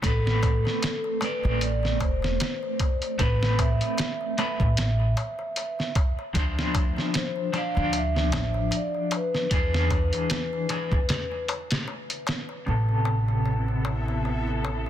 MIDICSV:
0, 0, Header, 1, 8, 480
1, 0, Start_track
1, 0, Key_signature, 0, "minor"
1, 0, Tempo, 789474
1, 22, Time_signature, 4, 2, 24, 8
1, 9057, End_track
2, 0, Start_track
2, 0, Title_t, "Vibraphone"
2, 0, Program_c, 0, 11
2, 30, Note_on_c, 0, 69, 78
2, 482, Note_off_c, 0, 69, 0
2, 984, Note_on_c, 0, 74, 101
2, 1225, Note_on_c, 0, 72, 90
2, 1231, Note_off_c, 0, 74, 0
2, 1941, Note_on_c, 0, 71, 97
2, 1966, Note_off_c, 0, 72, 0
2, 2184, Note_on_c, 0, 76, 92
2, 2189, Note_off_c, 0, 71, 0
2, 3599, Note_off_c, 0, 76, 0
2, 4357, Note_on_c, 0, 72, 92
2, 4597, Note_off_c, 0, 72, 0
2, 4603, Note_on_c, 0, 77, 109
2, 4839, Note_off_c, 0, 77, 0
2, 4845, Note_on_c, 0, 76, 103
2, 5325, Note_on_c, 0, 74, 95
2, 5328, Note_off_c, 0, 76, 0
2, 5538, Note_off_c, 0, 74, 0
2, 5569, Note_on_c, 0, 71, 78
2, 6971, Note_off_c, 0, 71, 0
2, 9057, End_track
3, 0, Start_track
3, 0, Title_t, "Synth texture"
3, 0, Program_c, 1, 99
3, 7707, Note_on_c, 1, 76, 74
3, 7710, Note_on_c, 1, 64, 69
3, 9057, Note_off_c, 1, 64, 0
3, 9057, Note_off_c, 1, 76, 0
3, 9057, End_track
4, 0, Start_track
4, 0, Title_t, "Clean electric guitar"
4, 0, Program_c, 2, 27
4, 20, Note_on_c, 2, 57, 85
4, 29, Note_on_c, 2, 60, 78
4, 40, Note_on_c, 2, 71, 94
4, 716, Note_off_c, 2, 57, 0
4, 720, Note_off_c, 2, 60, 0
4, 726, Note_off_c, 2, 71, 0
4, 738, Note_on_c, 2, 57, 90
4, 748, Note_on_c, 2, 60, 79
4, 757, Note_on_c, 2, 74, 100
4, 1915, Note_off_c, 2, 57, 0
4, 1920, Note_off_c, 2, 60, 0
4, 1925, Note_off_c, 2, 74, 0
4, 1937, Note_on_c, 2, 57, 82
4, 1947, Note_on_c, 2, 60, 81
4, 1957, Note_on_c, 2, 71, 90
4, 2634, Note_off_c, 2, 57, 0
4, 2640, Note_off_c, 2, 60, 0
4, 2644, Note_off_c, 2, 71, 0
4, 2663, Note_on_c, 2, 57, 96
4, 2667, Note_on_c, 2, 60, 86
4, 2672, Note_on_c, 2, 71, 103
4, 2809, Note_off_c, 2, 57, 0
4, 2811, Note_off_c, 2, 60, 0
4, 2814, Note_off_c, 2, 71, 0
4, 3856, Note_on_c, 2, 53, 86
4, 3866, Note_on_c, 2, 62, 80
4, 3876, Note_on_c, 2, 72, 101
4, 4554, Note_off_c, 2, 53, 0
4, 4559, Note_off_c, 2, 62, 0
4, 4564, Note_off_c, 2, 72, 0
4, 4578, Note_on_c, 2, 53, 93
4, 4589, Note_on_c, 2, 62, 89
4, 4598, Note_on_c, 2, 74, 106
4, 5755, Note_off_c, 2, 53, 0
4, 5760, Note_off_c, 2, 62, 0
4, 5765, Note_off_c, 2, 74, 0
4, 5780, Note_on_c, 2, 52, 85
4, 5789, Note_on_c, 2, 62, 77
4, 5799, Note_on_c, 2, 68, 100
4, 6476, Note_off_c, 2, 52, 0
4, 6481, Note_off_c, 2, 62, 0
4, 6486, Note_off_c, 2, 68, 0
4, 6503, Note_on_c, 2, 52, 97
4, 6509, Note_on_c, 2, 62, 83
4, 6513, Note_on_c, 2, 68, 105
4, 6649, Note_off_c, 2, 52, 0
4, 6652, Note_off_c, 2, 62, 0
4, 6654, Note_off_c, 2, 68, 0
4, 7699, Note_on_c, 2, 48, 62
4, 7708, Note_on_c, 2, 59, 57
4, 7717, Note_on_c, 2, 69, 71
4, 9057, Note_off_c, 2, 48, 0
4, 9057, Note_off_c, 2, 59, 0
4, 9057, Note_off_c, 2, 69, 0
4, 9057, End_track
5, 0, Start_track
5, 0, Title_t, "String section"
5, 0, Program_c, 3, 48
5, 7705, Note_on_c, 3, 48, 62
5, 7705, Note_on_c, 3, 59, 58
5, 7708, Note_on_c, 3, 69, 70
5, 9057, Note_off_c, 3, 48, 0
5, 9057, Note_off_c, 3, 59, 0
5, 9057, Note_off_c, 3, 69, 0
5, 9057, End_track
6, 0, Start_track
6, 0, Title_t, "Upright bass"
6, 0, Program_c, 4, 32
6, 24, Note_on_c, 4, 33, 88
6, 372, Note_off_c, 4, 33, 0
6, 879, Note_on_c, 4, 33, 88
6, 1223, Note_off_c, 4, 33, 0
6, 1223, Note_on_c, 4, 28, 96
6, 1438, Note_off_c, 4, 28, 0
6, 1942, Note_on_c, 4, 33, 95
6, 2291, Note_off_c, 4, 33, 0
6, 2799, Note_on_c, 4, 33, 87
6, 3123, Note_off_c, 4, 33, 0
6, 3864, Note_on_c, 4, 38, 97
6, 4212, Note_off_c, 4, 38, 0
6, 4722, Note_on_c, 4, 38, 99
6, 5066, Note_off_c, 4, 38, 0
6, 5066, Note_on_c, 4, 33, 95
6, 5279, Note_off_c, 4, 33, 0
6, 5785, Note_on_c, 4, 40, 97
6, 6133, Note_off_c, 4, 40, 0
6, 6639, Note_on_c, 4, 40, 94
6, 6743, Note_off_c, 4, 40, 0
6, 7708, Note_on_c, 4, 33, 74
6, 9057, Note_off_c, 4, 33, 0
6, 9057, End_track
7, 0, Start_track
7, 0, Title_t, "Darbuka"
7, 16, Note_on_c, 9, 63, 56
7, 77, Note_off_c, 9, 63, 0
7, 155, Note_on_c, 9, 63, 23
7, 216, Note_off_c, 9, 63, 0
7, 259, Note_on_c, 9, 63, 82
7, 320, Note_off_c, 9, 63, 0
7, 396, Note_on_c, 9, 63, 32
7, 457, Note_off_c, 9, 63, 0
7, 501, Note_on_c, 9, 63, 51
7, 561, Note_off_c, 9, 63, 0
7, 634, Note_on_c, 9, 63, 26
7, 694, Note_off_c, 9, 63, 0
7, 734, Note_on_c, 9, 63, 93
7, 795, Note_off_c, 9, 63, 0
7, 873, Note_on_c, 9, 63, 37
7, 934, Note_off_c, 9, 63, 0
7, 981, Note_on_c, 9, 63, 45
7, 1042, Note_off_c, 9, 63, 0
7, 1112, Note_on_c, 9, 63, 28
7, 1173, Note_off_c, 9, 63, 0
7, 1219, Note_on_c, 9, 63, 87
7, 1280, Note_off_c, 9, 63, 0
7, 1352, Note_on_c, 9, 63, 36
7, 1413, Note_off_c, 9, 63, 0
7, 1462, Note_on_c, 9, 63, 48
7, 1523, Note_off_c, 9, 63, 0
7, 1598, Note_on_c, 9, 63, 23
7, 1658, Note_off_c, 9, 63, 0
7, 1704, Note_on_c, 9, 63, 82
7, 1765, Note_off_c, 9, 63, 0
7, 1839, Note_on_c, 9, 63, 35
7, 1900, Note_off_c, 9, 63, 0
7, 1942, Note_on_c, 9, 63, 52
7, 2002, Note_off_c, 9, 63, 0
7, 2075, Note_on_c, 9, 63, 24
7, 2136, Note_off_c, 9, 63, 0
7, 2182, Note_on_c, 9, 63, 82
7, 2243, Note_off_c, 9, 63, 0
7, 2322, Note_on_c, 9, 63, 36
7, 2383, Note_off_c, 9, 63, 0
7, 2417, Note_on_c, 9, 63, 49
7, 2478, Note_off_c, 9, 63, 0
7, 2558, Note_on_c, 9, 63, 26
7, 2619, Note_off_c, 9, 63, 0
7, 2667, Note_on_c, 9, 63, 83
7, 2728, Note_off_c, 9, 63, 0
7, 2800, Note_on_c, 9, 63, 35
7, 2861, Note_off_c, 9, 63, 0
7, 2910, Note_on_c, 9, 63, 44
7, 2971, Note_off_c, 9, 63, 0
7, 3039, Note_on_c, 9, 63, 24
7, 3099, Note_off_c, 9, 63, 0
7, 3145, Note_on_c, 9, 63, 80
7, 3205, Note_off_c, 9, 63, 0
7, 3276, Note_on_c, 9, 63, 35
7, 3336, Note_off_c, 9, 63, 0
7, 3388, Note_on_c, 9, 63, 45
7, 3448, Note_off_c, 9, 63, 0
7, 3520, Note_on_c, 9, 63, 21
7, 3581, Note_off_c, 9, 63, 0
7, 3623, Note_on_c, 9, 63, 75
7, 3684, Note_off_c, 9, 63, 0
7, 3762, Note_on_c, 9, 63, 33
7, 3822, Note_off_c, 9, 63, 0
7, 3865, Note_on_c, 9, 63, 43
7, 3926, Note_off_c, 9, 63, 0
7, 3997, Note_on_c, 9, 63, 21
7, 4057, Note_off_c, 9, 63, 0
7, 4102, Note_on_c, 9, 63, 82
7, 4162, Note_off_c, 9, 63, 0
7, 4235, Note_on_c, 9, 63, 32
7, 4296, Note_off_c, 9, 63, 0
7, 4341, Note_on_c, 9, 63, 44
7, 4401, Note_off_c, 9, 63, 0
7, 4474, Note_on_c, 9, 63, 23
7, 4534, Note_off_c, 9, 63, 0
7, 4582, Note_on_c, 9, 63, 84
7, 4643, Note_off_c, 9, 63, 0
7, 4712, Note_on_c, 9, 63, 35
7, 4773, Note_off_c, 9, 63, 0
7, 4819, Note_on_c, 9, 63, 46
7, 4880, Note_off_c, 9, 63, 0
7, 4961, Note_on_c, 9, 63, 24
7, 5022, Note_off_c, 9, 63, 0
7, 5062, Note_on_c, 9, 63, 84
7, 5123, Note_off_c, 9, 63, 0
7, 5194, Note_on_c, 9, 63, 35
7, 5255, Note_off_c, 9, 63, 0
7, 5296, Note_on_c, 9, 63, 44
7, 5356, Note_off_c, 9, 63, 0
7, 5438, Note_on_c, 9, 63, 21
7, 5499, Note_off_c, 9, 63, 0
7, 5543, Note_on_c, 9, 63, 72
7, 5604, Note_off_c, 9, 63, 0
7, 5684, Note_on_c, 9, 63, 34
7, 5744, Note_off_c, 9, 63, 0
7, 5789, Note_on_c, 9, 63, 45
7, 5850, Note_off_c, 9, 63, 0
7, 5918, Note_on_c, 9, 63, 22
7, 5979, Note_off_c, 9, 63, 0
7, 6024, Note_on_c, 9, 63, 84
7, 6084, Note_off_c, 9, 63, 0
7, 6168, Note_on_c, 9, 63, 35
7, 6229, Note_off_c, 9, 63, 0
7, 6266, Note_on_c, 9, 63, 43
7, 6327, Note_off_c, 9, 63, 0
7, 6402, Note_on_c, 9, 63, 24
7, 6463, Note_off_c, 9, 63, 0
7, 6507, Note_on_c, 9, 63, 82
7, 6568, Note_off_c, 9, 63, 0
7, 6643, Note_on_c, 9, 63, 36
7, 6704, Note_off_c, 9, 63, 0
7, 6748, Note_on_c, 9, 63, 49
7, 6809, Note_off_c, 9, 63, 0
7, 6880, Note_on_c, 9, 63, 24
7, 6941, Note_off_c, 9, 63, 0
7, 6986, Note_on_c, 9, 63, 82
7, 7047, Note_off_c, 9, 63, 0
7, 7120, Note_on_c, 9, 63, 34
7, 7181, Note_off_c, 9, 63, 0
7, 7221, Note_on_c, 9, 63, 48
7, 7282, Note_off_c, 9, 63, 0
7, 7356, Note_on_c, 9, 63, 25
7, 7417, Note_off_c, 9, 63, 0
7, 7458, Note_on_c, 9, 63, 77
7, 7519, Note_off_c, 9, 63, 0
7, 7593, Note_on_c, 9, 63, 35
7, 7654, Note_off_c, 9, 63, 0
7, 7702, Note_on_c, 9, 63, 37
7, 7762, Note_off_c, 9, 63, 0
7, 7836, Note_on_c, 9, 63, 20
7, 7897, Note_off_c, 9, 63, 0
7, 7936, Note_on_c, 9, 63, 71
7, 7997, Note_off_c, 9, 63, 0
7, 8077, Note_on_c, 9, 63, 31
7, 8137, Note_off_c, 9, 63, 0
7, 8181, Note_on_c, 9, 63, 37
7, 8242, Note_off_c, 9, 63, 0
7, 8320, Note_on_c, 9, 63, 22
7, 8381, Note_off_c, 9, 63, 0
7, 8420, Note_on_c, 9, 63, 83
7, 8481, Note_off_c, 9, 63, 0
7, 8563, Note_on_c, 9, 63, 36
7, 8624, Note_off_c, 9, 63, 0
7, 8665, Note_on_c, 9, 63, 46
7, 8726, Note_off_c, 9, 63, 0
7, 8800, Note_on_c, 9, 63, 23
7, 8861, Note_off_c, 9, 63, 0
7, 8905, Note_on_c, 9, 63, 83
7, 8966, Note_off_c, 9, 63, 0
7, 9037, Note_on_c, 9, 63, 32
7, 9057, Note_off_c, 9, 63, 0
7, 9057, End_track
8, 0, Start_track
8, 0, Title_t, "Drums"
8, 21, Note_on_c, 9, 36, 101
8, 24, Note_on_c, 9, 42, 79
8, 82, Note_off_c, 9, 36, 0
8, 84, Note_off_c, 9, 42, 0
8, 165, Note_on_c, 9, 38, 45
8, 225, Note_off_c, 9, 38, 0
8, 261, Note_on_c, 9, 36, 86
8, 262, Note_on_c, 9, 42, 65
8, 322, Note_off_c, 9, 36, 0
8, 323, Note_off_c, 9, 42, 0
8, 405, Note_on_c, 9, 38, 33
8, 466, Note_off_c, 9, 38, 0
8, 502, Note_on_c, 9, 42, 77
8, 510, Note_on_c, 9, 38, 106
8, 563, Note_off_c, 9, 42, 0
8, 570, Note_off_c, 9, 38, 0
8, 742, Note_on_c, 9, 42, 59
8, 803, Note_off_c, 9, 42, 0
8, 981, Note_on_c, 9, 42, 87
8, 1041, Note_off_c, 9, 42, 0
8, 1124, Note_on_c, 9, 38, 35
8, 1185, Note_off_c, 9, 38, 0
8, 1220, Note_on_c, 9, 36, 88
8, 1220, Note_on_c, 9, 42, 62
8, 1281, Note_off_c, 9, 36, 0
8, 1281, Note_off_c, 9, 42, 0
8, 1364, Note_on_c, 9, 38, 44
8, 1425, Note_off_c, 9, 38, 0
8, 1460, Note_on_c, 9, 42, 78
8, 1468, Note_on_c, 9, 38, 108
8, 1521, Note_off_c, 9, 42, 0
8, 1528, Note_off_c, 9, 38, 0
8, 1699, Note_on_c, 9, 42, 66
8, 1700, Note_on_c, 9, 36, 90
8, 1760, Note_off_c, 9, 42, 0
8, 1761, Note_off_c, 9, 36, 0
8, 1835, Note_on_c, 9, 42, 39
8, 1895, Note_off_c, 9, 42, 0
8, 1940, Note_on_c, 9, 36, 101
8, 1940, Note_on_c, 9, 42, 83
8, 2001, Note_off_c, 9, 36, 0
8, 2001, Note_off_c, 9, 42, 0
8, 2083, Note_on_c, 9, 38, 54
8, 2144, Note_off_c, 9, 38, 0
8, 2181, Note_on_c, 9, 36, 87
8, 2181, Note_on_c, 9, 42, 66
8, 2242, Note_off_c, 9, 36, 0
8, 2242, Note_off_c, 9, 42, 0
8, 2316, Note_on_c, 9, 42, 41
8, 2377, Note_off_c, 9, 42, 0
8, 2421, Note_on_c, 9, 42, 79
8, 2428, Note_on_c, 9, 38, 104
8, 2482, Note_off_c, 9, 42, 0
8, 2489, Note_off_c, 9, 38, 0
8, 2662, Note_on_c, 9, 42, 59
8, 2723, Note_off_c, 9, 42, 0
8, 2796, Note_on_c, 9, 36, 88
8, 2857, Note_off_c, 9, 36, 0
8, 2901, Note_on_c, 9, 42, 75
8, 2908, Note_on_c, 9, 38, 96
8, 2962, Note_off_c, 9, 42, 0
8, 2969, Note_off_c, 9, 38, 0
8, 3143, Note_on_c, 9, 42, 62
8, 3204, Note_off_c, 9, 42, 0
8, 3382, Note_on_c, 9, 42, 68
8, 3442, Note_off_c, 9, 42, 0
8, 3525, Note_on_c, 9, 38, 32
8, 3586, Note_off_c, 9, 38, 0
8, 3620, Note_on_c, 9, 42, 66
8, 3621, Note_on_c, 9, 36, 89
8, 3681, Note_off_c, 9, 36, 0
8, 3681, Note_off_c, 9, 42, 0
8, 3860, Note_on_c, 9, 42, 86
8, 3861, Note_on_c, 9, 36, 95
8, 3921, Note_off_c, 9, 42, 0
8, 3922, Note_off_c, 9, 36, 0
8, 4005, Note_on_c, 9, 38, 48
8, 4065, Note_off_c, 9, 38, 0
8, 4101, Note_on_c, 9, 36, 90
8, 4102, Note_on_c, 9, 42, 64
8, 4162, Note_off_c, 9, 36, 0
8, 4163, Note_off_c, 9, 42, 0
8, 4245, Note_on_c, 9, 38, 34
8, 4306, Note_off_c, 9, 38, 0
8, 4341, Note_on_c, 9, 42, 82
8, 4349, Note_on_c, 9, 38, 106
8, 4402, Note_off_c, 9, 42, 0
8, 4409, Note_off_c, 9, 38, 0
8, 4582, Note_on_c, 9, 42, 63
8, 4643, Note_off_c, 9, 42, 0
8, 4821, Note_on_c, 9, 42, 78
8, 4882, Note_off_c, 9, 42, 0
8, 4964, Note_on_c, 9, 38, 37
8, 5025, Note_off_c, 9, 38, 0
8, 5060, Note_on_c, 9, 42, 76
8, 5067, Note_on_c, 9, 38, 100
8, 5121, Note_off_c, 9, 42, 0
8, 5128, Note_off_c, 9, 38, 0
8, 5301, Note_on_c, 9, 42, 61
8, 5361, Note_off_c, 9, 42, 0
8, 5539, Note_on_c, 9, 42, 81
8, 5600, Note_off_c, 9, 42, 0
8, 5682, Note_on_c, 9, 38, 33
8, 5742, Note_off_c, 9, 38, 0
8, 5781, Note_on_c, 9, 42, 86
8, 5782, Note_on_c, 9, 36, 104
8, 5842, Note_off_c, 9, 42, 0
8, 5843, Note_off_c, 9, 36, 0
8, 5925, Note_on_c, 9, 38, 54
8, 5985, Note_off_c, 9, 38, 0
8, 6022, Note_on_c, 9, 36, 91
8, 6022, Note_on_c, 9, 42, 62
8, 6083, Note_off_c, 9, 36, 0
8, 6083, Note_off_c, 9, 42, 0
8, 6157, Note_on_c, 9, 42, 41
8, 6218, Note_off_c, 9, 42, 0
8, 6261, Note_on_c, 9, 42, 85
8, 6268, Note_on_c, 9, 38, 109
8, 6322, Note_off_c, 9, 42, 0
8, 6329, Note_off_c, 9, 38, 0
8, 6501, Note_on_c, 9, 42, 65
8, 6561, Note_off_c, 9, 42, 0
8, 6637, Note_on_c, 9, 36, 88
8, 6698, Note_off_c, 9, 36, 0
8, 6742, Note_on_c, 9, 42, 77
8, 6749, Note_on_c, 9, 38, 96
8, 6802, Note_off_c, 9, 42, 0
8, 6810, Note_off_c, 9, 38, 0
8, 6983, Note_on_c, 9, 42, 55
8, 7043, Note_off_c, 9, 42, 0
8, 7117, Note_on_c, 9, 42, 77
8, 7124, Note_on_c, 9, 38, 101
8, 7178, Note_off_c, 9, 42, 0
8, 7185, Note_off_c, 9, 38, 0
8, 7357, Note_on_c, 9, 42, 58
8, 7417, Note_off_c, 9, 42, 0
8, 7463, Note_on_c, 9, 42, 79
8, 7470, Note_on_c, 9, 38, 107
8, 7524, Note_off_c, 9, 42, 0
8, 7531, Note_off_c, 9, 38, 0
8, 9057, End_track
0, 0, End_of_file